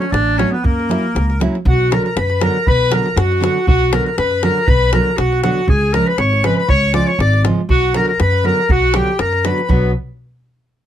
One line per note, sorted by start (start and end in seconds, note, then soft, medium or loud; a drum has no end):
0.00 0.13 C#4 medium
0.00 0.11 C#5 medium
0.00 davul high soft
0.11 0.43 A1 loud
0.11 0.39 D4 loud
0.11 0.38 D5 medium
0.11 davul high medium
0.37 0.54 F#3 medium
0.37 0.54 A3 medium
0.37 0.53 C#4 medium
0.37 0.54 D4 medium
0.37 0.55 F#4 medium
0.37 0.52 C#5 medium
0.37 davul high medium
0.51 0.65 B3 medium
0.51 0.64 B4 medium
0.63 0.95 F#2 loud
0.63 1.40 A#3 loud
0.63 1.40 A#4 medium
0.63 davul low medium
0.80 davul high soft
0.89 1.05 F#3 medium
0.89 1.05 A#3 medium
0.89 1.05 C#4 medium
0.89 1.05 E4 medium
0.89 davul high medium
1.15 1.45 C#2 loud
1.15 davul high medium
1.30 davul high soft
1.40 1.56 F#3 medium
1.40 1.56 A#3 medium
1.40 1.56 C#4 medium
1.40 1.57 E4 medium
1.40 davul high medium
1.55 davul high soft
1.65 1.96 B1 loud
1.65 1.95 F#4 loud
1.65 1.90 F#5 medium
1.65 davul low medium
1.91 2.06 D3 medium
1.91 2.06 F#3 medium
1.91 2.07 B3 medium
1.91 2.07 D4 medium
1.91 2.07 F#4 medium
1.91 2.05 A#4 medium
1.91 2.03 A#5 medium
1.91 davul high medium
2.04 2.20 A#4 medium
2.04 2.15 A#5 medium
2.04 davul high soft
2.16 2.47 F#2 loud
2.16 2.45 B4 loud
2.16 2.41 B5 medium
2.16 davul high medium
2.30 davul high soft
2.40 2.56 D3 medium
2.40 2.56 F#3 medium
2.40 2.57 B3 medium
2.40 2.57 D4 medium
2.40 2.57 F#4 medium
2.40 2.69 A#4 loud
2.40 2.67 A#5 medium
2.40 davul high medium
2.67 2.98 B1 loud
2.67 2.95 B4 loud
2.67 2.92 B5 medium
2.67 davul low medium
2.90 3.07 D3 medium
2.90 3.07 F#3 medium
2.90 3.07 B3 medium
2.90 3.07 D4 medium
2.90 3.08 F#4 medium
2.90 3.20 A#4 medium
2.90 3.17 A#5 medium
2.90 davul high medium
3.06 davul high soft
3.16 3.47 F#2 loud
3.16 3.43 F#4 loud
3.16 3.42 F#5 medium
3.16 davul high medium
3.32 davul high soft
3.40 3.57 D3 medium
3.40 3.57 F#3 medium
3.40 3.57 B3 medium
3.40 3.58 D4 medium
3.40 3.58 F#4 medium
3.40 3.67 F#4 medium
3.40 3.66 F#5 medium
3.40 davul high medium
3.67 3.98 B1 loud
3.67 3.95 F#4 loud
3.67 3.91 F#5 loud
3.67 davul low loud
3.92 4.08 D3 medium
3.92 4.08 F#3 medium
3.92 4.08 B3 medium
3.92 4.09 D4 medium
3.92 4.09 F#4 medium
3.92 4.06 A#4 loud
3.92 4.04 A#5 medium
3.92 davul high medium
4.06 4.18 A#4 medium
4.06 4.17 A#5 medium
4.06 davul high soft
4.18 4.48 F#2 loud
4.18 4.45 B4 loud
4.18 4.42 B5 medium
4.18 davul high medium
4.31 davul high soft
4.43 4.58 D3 medium
4.43 4.59 F#3 medium
4.43 4.59 B3 medium
4.43 4.59 D4 medium
4.43 4.59 F#4 medium
4.43 4.68 A#4 loud
4.43 4.69 A#5 medium
4.43 davul high medium
4.67 4.98 B1 loud
4.67 4.92 B4 loud
4.67 4.93 B5 loud
4.67 davul low medium
4.93 5.09 D3 medium
4.93 5.09 F#3 medium
4.93 5.09 B3 medium
4.93 5.09 D4 medium
4.93 5.10 F#4 medium
4.93 5.18 A#4 loud
4.93 5.17 A#5 medium
4.93 davul high medium
5.17 5.49 B1 loud
5.17 5.43 F#4 loud
5.17 5.41 F#5 medium
5.17 davul high medium
5.33 davul high soft
5.43 5.59 D3 medium
5.43 5.59 F#3 medium
5.43 5.59 B3 medium
5.43 5.60 D4 medium
5.43 5.71 F#4 loud
5.43 5.60 F#4 medium
5.43 5.67 F#5 medium
5.43 davul high medium
5.68 5.98 C#2 loud
5.68 5.95 G#4 loud
5.68 5.94 G#5 loud
5.68 davul low medium
5.93 6.09 C#3 medium
5.93 6.10 F3 medium
5.93 6.10 G#3 medium
5.93 6.10 C#4 medium
5.93 6.10 F4 medium
5.93 6.08 A#4 loud
5.93 6.07 A#5 medium
5.93 davul high medium
6.06 6.19 B4 loud
6.06 6.20 B5 medium
6.06 davul high soft
6.18 6.49 G#1 loud
6.18 6.46 C#5 loud
6.18 6.45 C#6 medium
6.18 davul high medium
6.33 davul high soft
6.43 6.59 C#3 medium
6.43 6.59 F3 medium
6.43 6.60 G#3 medium
6.43 6.60 C#4 medium
6.43 6.60 F4 medium
6.43 6.56 B4 loud
6.43 6.57 B5 medium
6.43 davul high medium
6.56 6.68 B4 medium
6.56 6.69 B5 medium
6.68 6.99 C#2 loud
6.68 6.96 C#5 loud
6.68 6.93 C#6 loud
6.68 davul low medium
6.93 7.09 C#3 medium
6.93 7.10 F3 medium
6.93 7.10 G#3 medium
6.93 7.10 C#4 medium
6.93 7.10 F4 medium
6.93 7.08 D5 loud
6.93 7.08 D6 loud
6.93 davul high medium
7.07 7.19 C#5 loud
7.07 7.20 C#6 medium
7.07 davul high soft
7.19 7.49 G#1 loud
7.19 7.44 D5 loud
7.19 7.43 D6 medium
7.19 davul high medium
7.33 davul high soft
7.44 7.60 C#3 medium
7.44 7.60 F3 medium
7.44 7.60 G#3 medium
7.44 7.60 C#4 medium
7.44 7.61 F4 medium
7.44 davul high medium
7.69 7.99 B1 loud
7.69 7.98 F#4 loud
7.69 7.94 F#5 medium
7.69 davul low medium
7.94 8.10 D3 medium
7.94 8.10 F#3 medium
7.94 8.10 B3 medium
7.94 8.10 D4 medium
7.94 8.11 F#4 medium
7.94 8.08 A#4 loud
7.94 8.06 A#5 medium
7.94 davul high medium
8.07 8.22 A#4 loud
8.07 8.19 A#5 medium
8.07 davul high soft
8.20 8.50 F#2 loud
8.20 8.47 B4 loud
8.20 8.45 B5 loud
8.20 davul high medium
8.33 davul high soft
8.43 8.59 D3 medium
8.43 8.60 F#3 medium
8.43 8.60 B3 medium
8.43 8.60 D4 medium
8.43 8.60 F#4 medium
8.43 8.73 A#4 loud
8.43 8.71 A#5 medium
8.69 9.00 B1 loud
8.69 8.96 F#4 loud
8.69 8.95 F#5 loud
8.69 davul low medium
8.82 davul high soft
8.94 9.10 D3 medium
8.94 9.10 F#3 medium
8.94 9.10 B3 medium
8.94 9.10 D4 medium
8.94 9.11 F#4 medium
8.94 9.21 G4 loud
8.94 9.20 G5 medium
8.94 davul high medium
9.07 davul high soft
9.19 9.49 F#2 loud
9.19 9.47 A#4 loud
9.19 9.45 A#5 medium
9.19 davul high medium
9.33 davul high soft
9.44 9.60 D3 medium
9.44 9.60 F#3 medium
9.44 9.60 B3 medium
9.44 9.60 D4 medium
9.44 9.60 F#4 medium
9.44 9.69 B4 medium
9.44 9.70 B5 medium
9.44 davul high medium
9.58 davul high soft
9.68 9.92 B1 loud
9.68 9.92 F#3 medium
9.68 9.92 B3 medium
9.68 9.92 D4 medium
9.68 9.92 F#4 medium
9.68 9.92 B4 medium
9.68 davul low medium